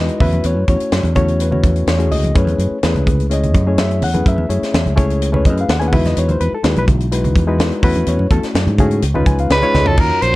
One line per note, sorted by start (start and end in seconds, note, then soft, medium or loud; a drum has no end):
0.00 0.21 G#3 medium
0.00 0.21 D#4 medium
0.00 0.19 E4 medium
0.00 0.20 F#4 medium
0.00 0.20 B4 medium
0.00 0.20 D#5 medium
0.08 closed hi-hat soft
0.20 0.42 E2 medium
0.20 0.63 A3 medium
0.20 0.63 C#4 medium
0.20 0.63 E4 medium
0.20 0.63 F#4 medium
0.20 0.64 B4 medium
0.20 0.44 E5 loud
0.20 kick loud
0.20 open hi-hat medium
0.20 low conga medium
0.32 closed hi-hat soft
0.32 high conga medium
0.44 0.56 E2 loud
0.44 0.68 C#5 medium
0.44 closed hi-hat medium
0.56 0.67 F#2 medium
0.68 0.79 E2 medium
0.68 1.11 A3 medium
0.68 1.11 C#4 medium
0.68 1.11 E4 medium
0.68 1.11 F#4 medium
0.68 1.11 C#5 medium
0.68 kick medium
0.68 closed hi-hat medium
0.80 muted fingered electric bass stroke soft
0.80 closed hi-hat soft
0.92 1.03 F#2 medium
0.92 snare loud
0.92 closed hi-hat medium
1.03 1.60 E2 loud
1.03 closed hi-hat soft
1.03 high conga medium
1.15 1.48 A3 medium
1.15 1.48 C#4 medium
1.15 1.48 E4 medium
1.15 1.48 F#4 medium
1.15 1.48 C#5 loud
1.15 kick medium
1.15 closed hi-hat medium
1.15 low conga medium
1.28 closed hi-hat soft
1.40 1.85 B4 medium
1.40 closed hi-hat medium
1.51 1.94 A3 medium
1.51 1.94 C#4 medium
1.51 1.94 E4 medium
1.51 1.94 F#4 medium
1.51 1.89 C#5 medium
1.51 low conga medium
1.63 1.85 E2 medium
1.63 kick medium
1.63 closed hi-hat medium
1.63 high conga medium
1.76 closed hi-hat soft
1.87 2.11 E2 medium
1.87 2.12 C#5 medium
1.87 snare loud
1.87 closed hi-hat medium
1.98 2.30 A3 medium
1.98 2.31 C#4 medium
1.98 2.31 E4 medium
1.98 2.31 F#4 medium
1.98 2.31 G#4 medium
1.98 closed hi-hat soft
2.11 2.33 C#2 medium
2.11 2.35 D#5 loud
2.11 open hi-hat medium
2.11 low conga medium
2.24 closed hi-hat soft
2.24 high conga medium
2.35 2.47 F#2 medium
2.35 2.77 A3 medium
2.35 2.77 C#4 medium
2.35 2.78 E4 medium
2.35 2.78 G#4 medium
2.35 2.78 B4 medium
2.35 3.04 C#5 medium
2.35 kick loud
2.35 closed hi-hat medium
2.47 2.58 E2 medium
2.47 closed hi-hat soft
2.47 high conga medium
2.58 2.70 F#2 medium
2.58 closed hi-hat medium
2.71 muted fingered electric bass stroke soft
2.83 2.94 E2 medium
2.83 3.25 A3 medium
2.83 3.25 C#4 medium
2.83 3.26 E4 medium
2.83 3.26 G#4 medium
2.83 3.26 B4 medium
2.83 snare loud
2.83 closed hi-hat medium
2.95 3.55 C#2 medium
2.95 closed hi-hat soft
2.95 high conga medium
3.07 kick medium
3.07 closed hi-hat medium
3.07 low conga medium
3.20 closed hi-hat soft
3.30 3.62 A3 medium
3.30 3.62 C#4 medium
3.30 3.62 E4 medium
3.30 3.63 G#4 medium
3.30 3.63 C#5 medium
3.30 3.76 D#5 medium
3.30 closed hi-hat medium
3.43 closed hi-hat soft
3.43 low conga medium
3.54 3.76 F#2 medium
3.54 kick medium
3.54 closed hi-hat medium
3.54 high conga medium
3.67 4.09 A3 medium
3.67 4.09 C#4 medium
3.67 4.09 E4 medium
3.67 4.09 G#4 medium
3.67 4.09 C#5 medium
3.78 4.02 F#2 medium
3.78 4.03 E5 medium
3.78 snare loud
3.78 closed hi-hat medium
3.91 closed hi-hat soft
4.02 4.24 E2 medium
4.02 4.26 F#5 loud
4.02 open hi-hat medium
4.02 low conga medium
4.13 4.45 A3 medium
4.13 4.46 C#4 medium
4.13 4.46 E4 medium
4.13 4.46 G#4 medium
4.13 4.46 B4 medium
4.13 closed hi-hat soft
4.13 high conga medium
4.26 4.38 F#2 loud
4.26 4.95 E5 medium
4.26 kick loud
4.26 closed hi-hat medium
4.38 4.49 E2 medium
4.38 high conga medium
4.49 4.61 F#2 medium
4.49 4.92 A3 medium
4.49 4.92 C#4 medium
4.49 4.92 E4 medium
4.49 4.92 G#4 medium
4.49 4.92 C#5 medium
4.49 closed hi-hat medium
4.62 muted fingered electric bass stroke soft
4.62 snare soft
4.62 closed hi-hat soft
4.74 4.85 E2 medium
4.74 snare loud
4.74 closed hi-hat medium
4.86 5.47 C#2 medium
4.86 closed hi-hat soft
4.86 high conga medium
4.96 5.29 A3 loud
4.96 5.29 C#4 medium
4.96 5.29 E4 medium
4.96 5.29 G#4 medium
4.96 5.29 C#5 loud
4.96 kick medium
4.96 closed hi-hat medium
4.96 low conga medium
5.10 closed hi-hat soft
5.22 closed hi-hat medium
5.32 5.75 A3 medium
5.32 5.75 C#4 medium
5.32 5.75 E4 medium
5.32 5.75 G#4 medium
5.32 5.76 B4 medium
5.32 low conga medium
5.36 5.46 C#5 medium
5.45 5.67 F#2 medium
5.45 5.58 D#5 medium
5.45 kick medium
5.45 closed hi-hat medium
5.45 high conga medium
5.57 5.70 F5 medium
5.57 closed hi-hat soft
5.69 5.93 D#2 medium
5.69 5.78 F#5 medium
5.69 snare loud
5.69 closed hi-hat medium
5.80 5.92 A3 medium
5.80 5.93 C#4 medium
5.80 5.91 E4 medium
5.80 5.93 G#4 medium
5.80 5.92 B4 medium
5.80 5.86 G#5 loud
5.80 closed hi-hat soft
5.88 5.94 F#5 medium
5.92 6.14 E2 medium
5.92 6.56 G#3 medium
5.92 6.56 D#4 medium
5.92 6.56 E4 medium
5.92 6.56 F#4 medium
5.92 6.39 B4 medium
5.92 6.05 E5 medium
5.92 kick loud
5.92 open hi-hat medium
5.92 low conga medium
6.05 6.17 D#5 medium
6.05 snare soft
6.05 closed hi-hat soft
6.05 high conga medium
6.17 6.29 E2 loud
6.17 6.29 C#5 medium
6.17 closed hi-hat medium
6.29 6.40 D#2 medium
6.29 6.41 C5 medium
6.29 closed hi-hat soft
6.29 high conga medium
6.40 6.52 E2 medium
6.40 6.52 B4 medium
6.40 closed hi-hat medium
6.52 6.65 A4 medium
6.52 muted fingered electric bass stroke soft
6.63 6.75 D#2 medium
6.63 7.06 G#3 medium
6.63 7.06 D#4 medium
6.63 7.07 E4 medium
6.63 7.07 F#4 medium
6.63 6.77 G#4 medium
6.63 6.77 B4 medium
6.63 snare loud
6.63 closed hi-hat medium
6.76 7.35 B1 medium
6.76 6.85 B4 medium
6.76 closed hi-hat soft
6.76 high conga medium
6.88 kick medium
6.88 closed hi-hat medium
6.88 low conga medium
7.00 closed hi-hat soft
7.11 7.44 G#3 medium
7.11 7.44 D#4 medium
7.11 7.44 E4 medium
7.11 7.44 F#4 medium
7.11 7.44 B4 medium
7.11 closed hi-hat medium
7.24 closed hi-hat soft
7.24 low conga medium
7.35 7.57 E2 medium
7.35 kick medium
7.35 closed hi-hat medium
7.35 high conga medium
7.47 7.83 G#3 medium
7.47 7.83 D#4 medium
7.47 7.82 E4 medium
7.47 7.82 F#4 medium
7.47 7.83 B4 medium
7.59 7.70 E2 medium
7.59 snare loud
7.59 closed hi-hat medium
7.72 closed hi-hat soft
7.83 8.05 E2 medium
7.83 8.26 A3 medium
7.83 8.26 C#4 medium
7.83 8.26 E4 medium
7.83 8.26 F#4 medium
7.83 8.26 B4 loud
7.83 kick loud
7.83 open hi-hat medium
7.83 low conga medium
7.95 closed hi-hat soft
7.95 high conga medium
8.06 8.19 E2 loud
8.06 8.31 C#5 medium
8.06 closed hi-hat medium
8.19 8.30 F#2 medium
8.19 high conga medium
8.30 8.42 E2 medium
8.30 8.73 A3 medium
8.30 8.74 C#4 medium
8.30 8.74 E4 medium
8.30 8.74 F#4 medium
8.30 8.46 A4 loud
8.30 kick medium
8.30 closed hi-hat medium
8.43 muted fingered electric bass stroke soft
8.43 snare soft
8.43 closed hi-hat soft
8.55 8.66 F#2 medium
8.55 snare loud
8.55 closed hi-hat medium
8.67 8.99 G#2 loud
8.67 closed hi-hat soft
8.67 high conga medium
8.78 9.03 A3 medium
8.78 9.03 C#4 medium
8.78 9.03 E4 medium
8.78 9.03 F#4 medium
8.78 9.03 G#4 loud
8.78 kick loud
8.78 closed hi-hat medium
8.78 low conga medium
8.91 closed hi-hat soft
9.02 9.24 C#2 loud
9.02 closed hi-hat medium
9.14 9.57 G#3 medium
9.14 9.57 C#4 medium
9.14 9.57 D#4 medium
9.14 9.57 F4 medium
9.14 9.57 B4 loud
9.14 low conga medium
9.26 9.48 C#2 medium
9.26 9.38 G#5 medium
9.26 kick medium
9.26 closed hi-hat medium
9.26 high conga medium
9.38 9.50 F5 medium
9.38 closed hi-hat soft
9.50 9.61 C#2 medium
9.50 9.89 G#3 medium
9.50 9.89 B4 medium
9.50 9.62 C#5 medium
9.50 snare loud
9.50 closed hi-hat medium
9.62 9.94 G#3 medium
9.62 9.94 C#4 medium
9.62 9.94 D#4 medium
9.62 9.94 F4 medium
9.62 9.94 C#5 loud
9.62 closed hi-hat soft
9.62 high conga medium
9.74 9.96 C#2 medium
9.74 9.96 D#5 medium
9.74 snare medium
9.74 low conga medium
9.86 9.99 F#3 medium
9.86 10.01 A4 medium
9.86 floor tom medium
9.97 10.09 D#2 medium
9.97 10.36 F#3 medium
9.97 10.22 F#3 medium
9.97 10.36 C#4 medium
9.97 10.36 D#4 medium
9.97 10.36 F4 soft
9.97 10.36 A#4 medium
9.97 10.24 A#4 medium
9.97 kick loud
9.97 crash medium
10.22 10.33 A#1 medium
10.22 10.36 F#3 medium
10.22 10.36 C5 medium
10.22 closed hi-hat medium